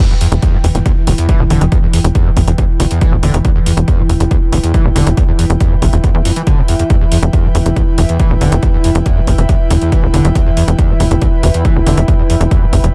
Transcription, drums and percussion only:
0.21 open hi-hat loud
0.32 closed hi-hat medium
0.42 kick loud
0.42 closed hi-hat medium
0.64 open hi-hat medium
0.75 closed hi-hat medium
0.86 kick loud
0.86 closed hi-hat medium
1.07 open hi-hat loud
1.18 closed hi-hat medium
1.29 kick loud
1.29 closed hi-hat medium
1.50 open hi-hat medium
1.61 closed hi-hat medium
1.72 kick loud
1.72 closed hi-hat medium
1.93 open hi-hat loud
2.04 closed hi-hat medium
2.15 kick loud
2.15 closed hi-hat medium
2.37 kick medium
2.37 open hi-hat medium
2.48 closed hi-hat medium
2.58 kick loud
2.58 closed hi-hat medium
2.80 open hi-hat loud
2.91 closed hi-hat medium
3.01 kick loud
3.01 closed hi-hat medium
3.23 open hi-hat medium
3.34 closed hi-hat medium
3.45 kick loud
3.45 closed hi-hat medium
3.66 open hi-hat loud
3.77 closed hi-hat medium
3.88 kick loud
3.88 closed hi-hat medium
4.09 open hi-hat medium
4.20 closed hi-hat medium
4.31 kick loud
4.31 closed hi-hat medium
4.53 open hi-hat loud
4.64 closed hi-hat medium
4.74 kick loud
4.74 closed hi-hat medium
4.96 open hi-hat loud
5.07 closed hi-hat medium
5.17 kick loud
5.17 closed hi-hat medium
5.39 open hi-hat loud
5.50 closed hi-hat medium
5.60 kick loud
5.60 closed hi-hat medium
5.82 kick medium
5.82 open hi-hat medium
5.93 closed hi-hat medium
6.04 kick loud
6.04 closed hi-hat medium
6.25 open hi-hat loud
6.36 closed hi-hat medium
6.47 kick loud
6.47 closed hi-hat medium
6.68 open hi-hat loud
6.79 closed hi-hat medium
6.90 kick loud
6.90 closed hi-hat medium
7.12 open hi-hat loud
7.23 closed hi-hat medium
7.33 kick loud
7.33 closed hi-hat medium
7.55 open hi-hat medium
7.66 closed hi-hat medium
7.76 kick loud
7.76 closed hi-hat medium
7.98 open hi-hat loud
8.09 closed hi-hat medium
8.20 kick loud
8.20 closed hi-hat medium
8.41 open hi-hat medium
8.52 closed hi-hat medium
8.63 kick loud
8.63 closed hi-hat medium
8.84 open hi-hat loud
8.95 closed hi-hat medium
9.06 kick loud
9.06 closed hi-hat medium
9.27 kick medium
9.27 open hi-hat medium
9.38 closed hi-hat medium
9.49 kick loud
9.49 closed hi-hat medium
9.70 open hi-hat loud
9.81 closed hi-hat medium
9.92 kick loud
9.92 closed hi-hat medium
10.14 open hi-hat medium
10.25 closed hi-hat medium
10.35 kick loud
10.35 closed hi-hat medium
10.57 open hi-hat loud
10.68 closed hi-hat medium
10.79 kick loud
10.79 closed hi-hat medium
11.00 open hi-hat medium
11.11 closed hi-hat medium
11.22 kick loud
11.22 closed hi-hat medium
11.43 open hi-hat loud
11.54 closed hi-hat medium
11.65 kick loud
11.65 closed hi-hat medium
11.86 open hi-hat medium
11.97 closed hi-hat medium
12.08 kick loud
12.08 closed hi-hat medium
12.30 open hi-hat loud
12.41 closed hi-hat medium
12.51 kick loud
12.51 closed hi-hat medium
12.73 kick medium
12.73 open hi-hat medium
12.84 closed hi-hat medium

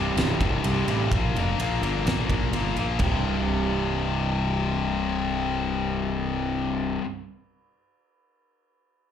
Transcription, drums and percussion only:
0.17 snare loud
0.17 ride medium
0.41 kick medium
0.41 ride medium
0.64 ride medium
0.88 ride medium
1.12 kick medium
1.12 ride medium
1.36 ride medium
1.60 ride medium
1.83 ride medium
2.07 snare loud
2.07 ride medium
2.30 kick medium
2.30 ride medium
2.53 ride medium
2.77 ride soft
2.99 kick medium
2.99 floor tom medium
2.99 crash medium

